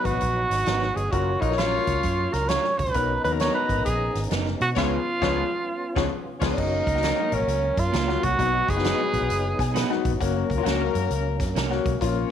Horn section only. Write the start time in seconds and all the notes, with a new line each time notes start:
Already playing: F#3 B3 D#4 B4
1.12 F#3 A#3 C#4 C#5
2.94 B3 A#4 D#5 A#5
4.75 G#3 C#4 F4 C#5
5.21 G#3 C#4 F4 C#5
5.96 G#3 C#4 F4 C#5
6.40 G#3 C#4 F4 C#5
6.57 F#3 A#3 C#4 A#4
8.39 F#3 B3 D#4 B4
10.19 F#3 A#3 C#4 A#4
12.01 A#3 C#4 F4 C#5